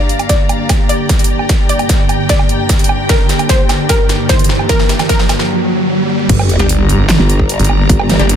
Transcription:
Already playing: ambient pad G2 D3 A#3 G4, string section G4 D5 F5 A#5, synth pluck D5, riser
0.09 closed hi-hat
0.19 closed hi-hat, low woodblock
0.29 synth pluck D5, kick, snare, closed hi-hat
0.49 closed hi-hat, low woodblock
0.69 kick, snare, closed hi-hat, low woodblock
0.89 synth pluck D5, closed hi-hat
0.96 string section G5
1.09 kick, snare, closed hi-hat
1.19 closed hi-hat
1.24 closed hi-hat
1.39 low woodblock
1.49 kick, snare, closed hi-hat
1.69 synth pluck D5, closed hi-hat
1.79 closed hi-hat, low woodblock
1.89 kick, snare, closed hi-hat
2.09 closed hi-hat, low woodblock
2.29 synth pluck D5, kick, snare, closed hi-hat
2.39 low woodblock
2.49 closed hi-hat
2.69 kick, snare, closed hi-hat
2.79 closed hi-hat
2.84 closed hi-hat
2.89 low woodblock
3.09 synth pluck A#4, kick, snare, closed hi-hat
3.29 snare, closed hi-hat
3.39 closed hi-hat, low woodblock
3.49 synth pluck C5, kick, snare, closed hi-hat
3.69 snare, closed hi-hat, low woodblock
3.89 synth pluck A#4, kick, snare, closed hi-hat, low woodblock
4.09 snare, closed hi-hat
4.29 synth pluck C5, kick, snare, closed hi-hat
4.39 closed hi-hat
4.44 closed hi-hat
4.49 snare
4.59 low woodblock
4.69 synth pluck A#4, kick, snare, closed hi-hat
4.79 snare
4.89 snare, closed hi-hat
4.99 snare, closed hi-hat, low woodblock
5.09 synth pluck A#4, kick, snare, closed hi-hat
5.19 snare
5.29 snare, closed hi-hat, low woodblock
5.39 snare
6.09 high tom
6.19 mid tom
6.29 wobble bass G1, ambient pad D3 G3 A#3, string section G4, kick, closed hi-hat, crash, sub drop
6.39 low woodblock
6.45 string section D5
6.49 closed hi-hat
6.59 detuned saw bass G1, synth stab G3 D4 G4, closed hi-hat
6.69 closed hi-hat
6.77 string section A#5
6.89 closed hi-hat
7.09 snare, clap, closed hi-hat
7.19 wobble bass G1
7.29 closed hi-hat
7.39 kick
7.49 closed hi-hat
7.59 detuned saw bass G1, closed hi-hat
7.64 closed hi-hat
7.69 low woodblock
7.79 detuned saw bass G1
7.89 wobble bass G1, kick, closed hi-hat
7.99 low woodblock
8.09 snare, closed hi-hat
8.19 detuned saw bass G1, synth stab G3 D4 G4, closed hi-hat
8.29 closed hi-hat

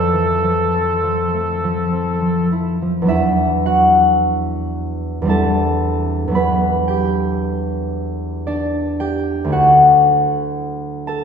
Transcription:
Already playing: harp F2 F3 A3 E4 F4 B4 C5 D5 F5 A5 C6, cor anglais A4
0.13 harp E3
0.43 harp F3
0.76 harp C4
1.03 harp F3
1.33 harp A3
1.64 harp F3
1.92 harp C4
2.21 harp F3
2.52 harp E4
2.82 harp F3
3.02 harp E2 F#3 B3
3.07 harp D4 E4 E5
3.66 harp F#4 F#5
5.22 harp E2 G3 C4
5.28 harp D4 E4 A4 A5
6.28 harp E2 F#3 B3
6.32 harp D4 E4 B4 B5
6.88 harp G4 G5
8.47 harp D4 D5
9.00 harp G4 G5
9.44 harp D2 A3 D4
9.49 harp E4 F#4 F#5
11.07 harp A4 A5

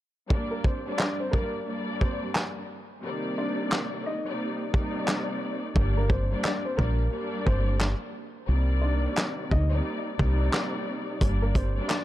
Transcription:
0.29 string section G2 G3 A#3 D4 D5, kick
0.51 upright piano A#3 A#4
0.64 upright piano C4 C5, kick
0.85 string section G2 G3 A#3 D4 D5
0.98 upright piano D4 D5, finger snap, snare, clap
1.20 upright piano C4 C5
1.31 string section G2 G3 A#3 D4 D5, upright piano A#3 A#4, kick
1.65 string section G2 G3 A#3 D4 D5
2.01 upright piano C4 C5, kick
2.34 finger snap, snare, clap
3.02 string section C3 D#3 G3 A#3 D5
3.38 upright piano D4 D5
3.71 finger snap, snare, clap
4.06 upright piano D#4 D#5
4.25 string section C3 G3 A#3 D#4 D5
4.71 string section C3 G3 A#3 D#4 D5, kick
5.07 finger snap, snare, clap
5.74 fingered electric bass G1, string section G2 G3 A#3 D4 D5, kick
5.97 upright piano A#3 A#4
6.09 upright piano C4 C5, kick
6.30 string section G2 G3 A#3 D4 D5
6.43 upright piano D4 D5, finger snap, snare, clap
6.65 upright piano C4 C5
6.77 fingered electric bass A#1, string section G2 G3 A#3 D4 D5, upright piano A#3 A#4, kick
7.10 string section G2 G3 A#3 D4 D5
7.46 fingered electric bass G1, upright piano C4 C5, kick
7.80 finger snap, snare, clap
8.47 fingered electric bass C2, string section C3 D#3 G3 A#3 D5
8.82 upright piano D4 D5
9.16 finger snap, snare, clap
9.51 fingered electric bass D2, upright piano D#4 D#5, kick
9.70 string section C3 G3 A#3 D#4 D5
10.17 fingered electric bass C2, string section C3 G3 A#3 D#4 D5, kick
10.53 finger snap, snare, clap
11.19 fingered electric bass G1, string section G2 G3 A#3 D4 D5, kick, closed hi-hat
11.42 upright piano A#3 A#4
11.55 upright piano C4 C5, kick, closed hi-hat, shaker
11.75 string section G2 G3 A#3 D4 D5
11.88 upright piano D4 D5, finger snap, snare, clap, closed hi-hat

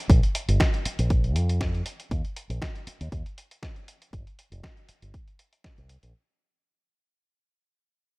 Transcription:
0.09 fingered electric bass A#1, kick, closed hi-hat
0.23 closed hi-hat
0.35 closed hi-hat
0.48 fingered electric bass G1, closed hi-hat
0.60 kick, snare, closed hi-hat
0.74 closed hi-hat
0.85 muted fingered electric bass stroke, closed hi-hat
0.99 fingered electric bass A#1, closed hi-hat
1.10 kick, closed hi-hat
1.24 closed hi-hat
1.36 fingered electric bass F2, closed hi-hat
1.49 closed hi-hat
1.61 kick, snare, closed hi-hat
1.74 closed hi-hat
1.86 closed hi-hat
2.00 closed hi-hat
2.11 fingered electric bass D#2, kick, closed hi-hat
2.25 closed hi-hat
2.36 closed hi-hat
2.50 fingered electric bass A#1, closed hi-hat
2.62 kick, snare, closed hi-hat
2.75 closed hi-hat
2.87 muted fingered electric bass stroke, closed hi-hat
3.01 fingered electric bass D#2, closed hi-hat
3.12 fingered electric bass D#2, kick, closed hi-hat
3.26 closed hi-hat
3.38 closed hi-hat
3.51 closed hi-hat
3.63 kick, snare, closed hi-hat
3.76 closed hi-hat
3.88 closed hi-hat
4.02 closed hi-hat
4.13 fingered electric bass G1, kick, closed hi-hat
4.27 closed hi-hat
4.39 closed hi-hat
4.52 fingered electric bass F1, closed hi-hat
4.64 kick, snare, closed hi-hat
4.77 closed hi-hat
4.89 muted fingered electric bass stroke, closed hi-hat
5.02 fingered electric bass G1, closed hi-hat
5.14 kick, closed hi-hat
5.28 closed hi-hat
5.39 closed hi-hat
5.53 closed hi-hat
5.64 kick, snare, closed hi-hat
5.78 fingered electric bass C2, closed hi-hat
5.89 closed hi-hat
6.03 fingered electric bass A#1, closed hi-hat

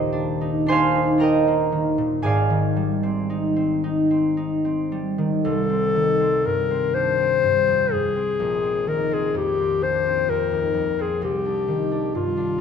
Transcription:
Already playing: harp D#1 D#2 A#2 D#3 A#3 G4 C5 D#5 G5
0.13 harp D4
0.41 harp D#4
0.66 harp D4 C5 G#5 C6
0.72 harp F5
0.95 harp D#4
1.18 harp D4 A#4 G5 A#5
1.23 harp D#5
1.48 harp A#3
1.72 harp D#3
1.98 harp A#2
2.22 harp G#1 G#2 G#4 D5 F5 G#5
2.50 harp D#3
2.76 harp G3
3.03 harp C4
3.30 harp D#4
3.56 harp C4
3.84 harp D#4
4.11 harp C4
4.37 harp D#4
4.65 harp C4
4.92 harp G3
5.18 harp D#3
5.45 harp C2, clarinet A4
5.69 harp C4
5.95 harp D#3
6.20 harp C4
6.45 harp G2, clarinet A#4
6.71 harp C4
6.94 harp D4, clarinet C5
7.18 harp C4
7.43 harp G2
7.67 harp F2
7.92 harp G2, clarinet G#4
8.16 harp C4
8.40 harp A#1
8.63 harp C4
8.87 harp D#3, clarinet A#4
9.11 harp C4, clarinet G#4
9.34 harp F2, clarinet G4
9.58 harp C4
9.82 harp D4, clarinet C5
10.06 harp C4
10.28 harp F2, clarinet A#4
10.51 harp D#2
10.74 harp F2
10.99 harp C4, clarinet G#4
11.22 harp C2, clarinet G4
11.45 harp D4
11.68 harp D#3
11.92 harp D4
12.15 harp G2, clarinet F4
12.37 harp D4

